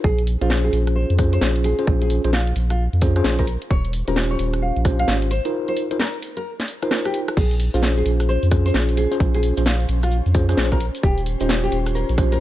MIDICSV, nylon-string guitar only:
0, 0, Header, 1, 2, 480
1, 0, Start_track
1, 0, Tempo, 458015
1, 45, Time_signature, 4, 2, 24, 8
1, 12996, End_track
2, 0, Start_track
2, 0, Title_t, "Nylon-string guitar"
2, 0, Program_c, 0, 24
2, 42, Note_on_c, 0, 68, 93
2, 222, Note_off_c, 0, 68, 0
2, 432, Note_on_c, 0, 65, 83
2, 512, Note_off_c, 0, 65, 0
2, 674, Note_on_c, 0, 68, 85
2, 811, Note_off_c, 0, 68, 0
2, 1001, Note_on_c, 0, 72, 88
2, 1181, Note_off_c, 0, 72, 0
2, 1395, Note_on_c, 0, 72, 90
2, 1532, Note_off_c, 0, 72, 0
2, 1722, Note_on_c, 0, 68, 85
2, 1902, Note_off_c, 0, 68, 0
2, 2114, Note_on_c, 0, 68, 90
2, 2251, Note_off_c, 0, 68, 0
2, 2442, Note_on_c, 0, 65, 88
2, 2622, Note_off_c, 0, 65, 0
2, 2834, Note_on_c, 0, 65, 89
2, 2971, Note_off_c, 0, 65, 0
2, 3553, Note_on_c, 0, 70, 93
2, 3690, Note_off_c, 0, 70, 0
2, 3882, Note_on_c, 0, 73, 93
2, 4062, Note_off_c, 0, 73, 0
2, 4273, Note_on_c, 0, 70, 86
2, 4352, Note_off_c, 0, 70, 0
2, 4513, Note_on_c, 0, 73, 86
2, 4651, Note_off_c, 0, 73, 0
2, 4843, Note_on_c, 0, 77, 90
2, 5022, Note_off_c, 0, 77, 0
2, 5234, Note_on_c, 0, 77, 93
2, 5371, Note_off_c, 0, 77, 0
2, 5564, Note_on_c, 0, 72, 87
2, 5743, Note_off_c, 0, 72, 0
2, 5956, Note_on_c, 0, 72, 94
2, 6092, Note_off_c, 0, 72, 0
2, 6283, Note_on_c, 0, 70, 88
2, 6462, Note_off_c, 0, 70, 0
2, 6674, Note_on_c, 0, 70, 95
2, 6811, Note_off_c, 0, 70, 0
2, 7393, Note_on_c, 0, 67, 88
2, 7531, Note_off_c, 0, 67, 0
2, 7724, Note_on_c, 0, 68, 95
2, 7903, Note_off_c, 0, 68, 0
2, 8114, Note_on_c, 0, 65, 82
2, 8193, Note_off_c, 0, 65, 0
2, 8355, Note_on_c, 0, 68, 87
2, 8492, Note_off_c, 0, 68, 0
2, 8686, Note_on_c, 0, 72, 89
2, 8864, Note_off_c, 0, 72, 0
2, 9073, Note_on_c, 0, 72, 91
2, 9211, Note_off_c, 0, 72, 0
2, 9405, Note_on_c, 0, 68, 86
2, 9583, Note_off_c, 0, 68, 0
2, 9796, Note_on_c, 0, 68, 93
2, 9932, Note_off_c, 0, 68, 0
2, 10124, Note_on_c, 0, 65, 92
2, 10303, Note_off_c, 0, 65, 0
2, 10513, Note_on_c, 0, 65, 91
2, 10651, Note_off_c, 0, 65, 0
2, 11233, Note_on_c, 0, 70, 88
2, 11370, Note_off_c, 0, 70, 0
2, 11563, Note_on_c, 0, 67, 93
2, 11742, Note_off_c, 0, 67, 0
2, 11955, Note_on_c, 0, 63, 85
2, 12033, Note_off_c, 0, 63, 0
2, 12194, Note_on_c, 0, 67, 88
2, 12331, Note_off_c, 0, 67, 0
2, 12523, Note_on_c, 0, 70, 90
2, 12702, Note_off_c, 0, 70, 0
2, 12914, Note_on_c, 0, 70, 91
2, 12996, Note_off_c, 0, 70, 0
2, 12996, End_track
0, 0, End_of_file